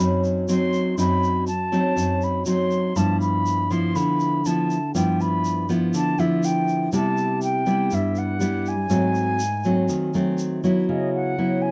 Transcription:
0.00 0.95 F#2 medium
0.00 0.45 F#3 medium
0.00 0.45 C4 medium
0.00 0.45 D#4 medium
0.00 0.21 B5 medium
0.24 shaker soft
0.49 0.94 F#3 soft
0.49 0.94 C4 soft
0.49 0.94 D#4 medium
0.49 0.95 C6 loud
0.49 shaker medium
0.73 shaker soft
0.98 1.94 F#2 medium
0.98 1.47 F#3 soft
0.98 1.47 C4 medium
0.98 1.47 D#4 medium
0.98 1.44 B5 loud
0.98 shaker medium
1.23 shaker soft
1.47 2.24 A5 medium
1.47 shaker medium
1.72 2.42 F#3 medium
1.72 2.43 C4 medium
1.72 2.43 D#4 medium
1.72 shaker soft
1.96 2.93 F#2 medium
1.96 shaker medium
2.22 2.46 B5 medium
2.22 shaker soft
2.46 2.92 F#3 soft
2.46 2.92 C4 soft
2.46 2.92 D#4 medium
2.46 2.97 C6 medium
2.46 shaker medium
2.71 shaker soft
2.96 3.93 G2 medium
2.96 3.66 F3 medium
2.96 3.67 B3 medium
2.96 3.67 E4 medium
2.96 3.20 A5 medium
2.96 shaker medium
3.20 3.72 B5 loud
3.20 shaker soft
3.46 shaker medium
3.70 4.41 F3 medium
3.70 4.41 B3 medium
3.70 4.41 E4 medium
3.70 3.96 C6 medium
3.70 shaker soft
3.95 4.92 D3 medium
3.95 4.47 B5 medium
3.95 shaker medium
4.20 shaker soft
4.45 4.77 F3 medium
4.45 4.77 B3 medium
4.45 4.77 E4 medium
4.45 4.94 A5 medium
4.45 shaker medium
4.71 shaker soft
4.94 5.91 G2 medium
4.94 5.65 F3 medium
4.94 5.65 B3 soft
4.94 5.65 E4 medium
4.94 5.22 G5 medium
4.94 shaker medium
5.20 5.67 B5 medium
5.20 shaker soft
5.45 shaker medium
5.69 6.14 F3 medium
5.69 6.15 B3 medium
5.69 6.15 E4 medium
5.69 shaker soft
5.94 6.90 D3 medium
5.94 6.20 A5 loud
5.94 shaker medium
6.19 6.89 F3 medium
6.19 6.89 B3 medium
6.19 6.89 E4 medium
6.19 6.46 E5 medium
6.19 shaker soft
6.43 6.93 G5 loud
6.43 shaker medium
6.68 shaker soft
6.93 7.89 C3 medium
6.93 7.63 G3 medium
6.93 7.63 B3 medium
6.93 7.63 E4 medium
6.93 7.39 A5 medium
6.93 shaker medium
7.17 shaker soft
7.42 7.95 G5 loud
7.42 shaker medium
7.66 8.37 G3 medium
7.66 8.37 B3 medium
7.66 8.37 E4 medium
7.66 shaker soft
7.91 8.88 G2 medium
7.91 8.19 E5 medium
7.91 shaker medium
8.16 8.69 F#5 medium
8.16 shaker soft
8.40 8.72 G3 medium
8.40 8.73 B3 medium
8.40 8.73 E4 medium
8.40 shaker medium
8.66 10.40 G#5 loud
8.66 shaker soft
8.90 9.87 G#2 medium
8.90 9.39 F#3 medium
8.90 9.40 A3 medium
8.90 9.40 C4 medium
8.90 shaker medium
9.15 shaker soft
9.39 shaker medium
9.64 10.10 F#3 medium
9.64 10.11 A3 medium
9.64 10.11 C4 medium
9.64 shaker soft
9.89 10.86 D#3 medium
9.89 shaker medium
10.14 10.60 F#3 medium
10.14 10.60 A3 medium
10.14 10.60 C4 medium
10.14 shaker soft
10.38 shaker medium
10.64 11.36 F#3 medium
10.64 11.36 B3 medium
10.64 11.36 E4 medium
10.64 shaker soft
10.89 11.71 C#3 medium
10.89 11.12 D#5 medium
11.14 11.63 F#5 medium
11.38 11.71 F#3 soft
11.38 11.71 B3 medium
11.38 11.71 E4 medium
11.61 11.71 G#5 medium

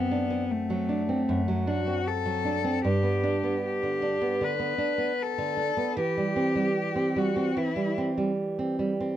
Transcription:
0.00 1.24 F#2 soft
0.00 0.53 B3 medium
0.00 0.24 C4 soft
0.11 0.43 D4 soft
0.30 0.93 C4 soft
0.51 1.68 A3 soft
0.70 1.01 F#3 soft
0.89 1.21 D4 soft
1.09 1.41 C4 soft
1.29 2.81 F#2 soft
1.48 1.80 F#3 soft
1.67 1.99 D4 soft
1.67 2.09 F#4 medium
1.87 2.50 C4 soft
2.08 2.85 A4 medium
2.25 2.57 F#3 soft
2.45 2.77 D4 soft
2.64 2.84 C4 soft
2.84 4.38 G2 soft
2.84 3.62 G4 medium
3.03 3.35 B3 soft
3.23 3.55 D4 soft
3.43 4.07 B3 soft
3.65 4.45 G4 medium
3.83 4.15 D3 soft
4.02 4.34 D4 soft
4.21 4.53 B3 soft
4.41 4.73 D3 soft
4.41 5.24 B4 medium
4.59 4.92 B3 soft
4.78 5.11 D4 soft
4.98 5.62 B3 soft
5.23 6.00 A4 medium
5.38 5.70 D3 soft
5.57 5.90 D4 soft
5.77 5.98 B3 soft
5.97 7.52 E3 medium
5.97 7.20 G4 medium
6.17 6.49 G3 soft
6.36 6.68 C4 soft
6.55 7.15 G3 soft
6.96 7.28 C4 soft
7.16 7.49 G3 soft
7.16 7.59 F#4 medium
7.36 7.69 C4 soft
7.57 9.16 E3 soft
7.57 7.98 E4 medium
7.76 8.09 G3 soft
7.98 8.31 C4 soft
8.17 8.78 G3 soft
8.59 8.92 C4 soft
8.79 9.12 G3 soft
9.00 9.17 C4 soft

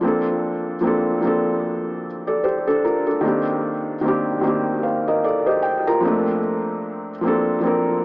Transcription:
0.01 0.73 F3 medium
0.01 0.74 A#3 medium
0.01 0.75 C4 medium
0.06 0.76 D4 medium
0.06 0.77 A4 medium
0.81 1.18 F3 medium
0.81 1.18 A#3 medium
0.81 1.19 C4 medium
0.86 1.20 D4 medium
0.86 1.21 A4 medium
1.21 2.65 F3 medium
1.21 2.66 A#3 medium
1.21 2.66 C4 medium
1.26 2.04 D4 medium
1.26 2.05 A4 medium
2.27 2.43 A4 medium
2.27 2.43 D5 medium
2.44 2.66 G4 soft
2.44 2.65 C5 medium
2.67 2.83 D4 medium
2.67 2.83 A4 medium
2.85 3.06 F4 soft
2.85 3.06 A#4 medium
3.07 3.24 D4 soft
3.07 3.44 A4 medium
3.21 3.93 D#3 medium
3.21 3.94 A#3 medium
3.21 3.95 C4 medium
3.26 3.96 D4 medium
3.26 3.97 G4 medium
4.01 4.38 D#3 medium
4.01 4.39 A#3 medium
4.01 4.39 C4 medium
4.06 4.40 D4 medium
4.06 4.41 G4 medium
4.41 5.85 D#3 medium
4.41 5.86 A#3 medium
4.41 5.87 C4 medium
4.46 5.88 D4 medium
4.46 4.85 G4 medium
4.83 5.05 C5 soft
4.83 5.05 F5 medium
5.08 5.23 A#4 medium
5.08 5.23 D#5 medium
5.24 5.46 A4 soft
5.24 5.45 D5 medium
5.46 5.85 G4 medium
5.46 5.84 C5 medium
5.46 5.62 D#5 medium
5.62 5.84 G5 medium
5.87 6.25 F4 medium
5.87 6.25 A#4 medium
5.87 6.40 A#5 medium
6.01 7.09 F3 medium
6.01 7.10 A#3 medium
6.01 7.11 C4 medium
6.05 7.12 A3 medium
6.05 7.11 D4 medium
7.21 7.58 F3 medium
7.21 7.59 A#3 medium
7.21 7.59 C4 medium
7.26 7.60 D4 medium
7.26 7.61 A4 medium
7.60 8.05 F3 medium
7.60 8.05 A#3 medium
7.60 8.05 C4 medium
7.65 8.05 D4 medium
7.65 8.05 A#4 medium

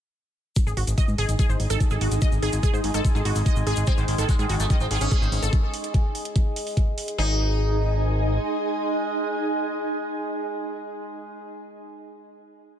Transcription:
0.56 7.17 G#3 medium
0.56 5.53 D#4 medium
0.56 7.17 G#4 medium
0.56 kick loud
0.56 closed hi-hat medium
0.56 shaker medium
0.67 0.73 G#1 medium
0.67 0.72 G#4 medium
0.67 shaker soft
0.71 5.53 D#5 medium
0.77 0.84 G#1 loud
0.77 0.83 F#4 medium
0.77 open hi-hat loud
0.83 5.53 G#4 medium
0.87 0.94 G#1 medium
0.87 closed hi-hat medium
0.87 shaker medium
0.98 1.06 D#5 loud
0.98 kick loud
0.98 closed hi-hat medium
0.98 shaker medium
1.08 1.15 G#2 medium
1.08 shaker soft
1.18 1.25 G#1 loud
1.18 1.27 G#4 loud
1.18 open hi-hat loud
1.29 1.36 G#1 medium
1.29 closed hi-hat medium
1.29 shaker medium
1.39 1.45 G#4 loud
1.39 kick loud
1.39 closed hi-hat medium
1.39 shaker medium
1.49 1.56 G#1 medium
1.49 1.55 C5 medium
1.49 shaker soft
1.60 1.67 G#1 loud
1.60 open hi-hat loud
1.70 1.77 G#1 medium
1.70 1.79 A4 loud
1.70 closed hi-hat medium
1.70 shaker medium
1.80 kick loud
1.80 closed hi-hat medium
1.80 shaker medium
1.90 1.98 G#1 medium
1.90 1.97 G#4 medium
1.90 shaker soft
2.01 2.08 G#1 loud
2.01 2.07 F#4 medium
2.01 open hi-hat loud
2.11 2.18 G#1 medium
2.11 closed hi-hat medium
2.11 shaker medium
2.21 2.30 D#5 loud
2.21 kick loud
2.21 closed hi-hat medium
2.21 shaker medium
2.32 2.39 G#1 medium
2.32 5.53 G#5 medium
2.32 shaker soft
2.42 2.49 G#1 loud
2.42 2.51 G#4 loud
2.42 open hi-hat loud
2.53 2.60 G#1 medium
2.53 closed hi-hat medium
2.53 shaker medium
2.63 2.69 G#4 loud
2.63 kick loud
2.63 closed hi-hat medium
2.63 shaker medium
2.73 2.80 G#2 medium
2.73 2.79 C5 medium
2.73 shaker soft
2.84 2.91 G#1 loud
2.84 open hi-hat loud
2.94 3.01 G#1 medium
2.94 3.03 A4 loud
2.94 closed hi-hat medium
2.94 shaker medium
3.05 kick loud
3.05 closed hi-hat medium
3.05 shaker medium
3.15 3.22 G#1 medium
3.15 3.21 G#4 medium
3.15 shaker soft
3.25 3.32 G#1 loud
3.25 3.31 F#4 medium
3.25 open hi-hat loud
3.36 3.42 G#1 medium
3.36 open hi-hat medium
3.36 shaker medium
3.46 3.55 D#5 loud
3.46 kick loud
3.46 closed hi-hat medium
3.46 shaker medium
3.56 3.63 G#1 medium
3.56 shaker soft
3.67 3.73 G#1 loud
3.67 3.75 G#4 loud
3.67 open hi-hat loud
3.76 3.84 G#1 medium
3.76 closed hi-hat medium
3.76 shaker medium
3.87 3.92 C4 loud
3.87 3.93 G#4 loud
3.87 kick loud
3.87 closed hi-hat medium
3.87 shaker medium
3.97 4.05 G#1 medium
3.97 4.02 D#3 medium
3.97 4.03 C5 medium
3.97 shaker soft
4.08 4.15 G#1 loud
4.08 4.13 D#3 medium
4.08 open hi-hat loud
4.18 4.25 G#1 medium
4.18 4.23 D#3 medium
4.18 4.27 A4 loud
4.18 closed hi-hat medium
4.18 shaker medium
4.29 4.33 G#3 medium
4.29 kick loud
4.29 closed hi-hat medium
4.29 shaker medium
4.39 4.46 G#2 medium
4.39 4.44 D#3 medium
4.39 4.45 G#4 medium
4.39 shaker soft
4.49 4.56 G#1 loud
4.49 4.54 D#3 medium
4.49 4.55 F#4 medium
4.49 open hi-hat loud
4.60 4.67 G#1 medium
4.60 4.65 A3 medium
4.60 closed hi-hat medium
4.60 shaker medium
4.70 4.75 D#3 medium
4.70 4.79 D#5 loud
4.70 kick loud
4.70 closed hi-hat medium
4.70 shaker medium
4.80 4.87 G#1 medium
4.80 4.85 C4 medium
4.80 shaker soft
4.91 4.98 G#1 loud
4.91 4.96 D#3 medium
4.91 4.99 G#4 loud
4.91 open hi-hat loud
5.01 5.08 G#1 loud
5.01 5.45 C#4 medium
5.01 closed hi-hat medium
5.01 shaker medium
5.11 5.17 G#4 loud
5.11 kick loud
5.11 closed hi-hat medium
5.11 shaker medium
5.22 5.29 G#1 medium
5.22 5.28 C5 medium
5.22 shaker soft
5.32 5.39 G#1 loud
5.32 open hi-hat loud
5.43 5.49 G#1 medium
5.43 5.51 A4 loud
5.43 closed hi-hat medium
5.43 shaker medium
5.53 kick loud
5.53 closed hi-hat medium
5.74 open hi-hat loud
5.84 closed hi-hat medium
5.94 kick loud
5.94 closed hi-hat medium
6.15 open hi-hat loud
6.25 closed hi-hat medium
6.36 kick loud
6.36 closed hi-hat medium
6.56 open hi-hat loud
6.67 open hi-hat medium
6.77 kick loud
6.77 closed hi-hat medium
6.98 open hi-hat loud
7.08 closed hi-hat medium
7.18 8.38 G#1 loud
7.18 11.30 G#3 medium
7.18 11.89 D#4 medium
7.18 11.25 D#4 medium
7.18 11.30 G#4 medium
7.18 7.38 G#4 medium
7.25 11.25 G#4 medium
7.31 11.25 D#5 medium
7.37 11.25 G#5 medium

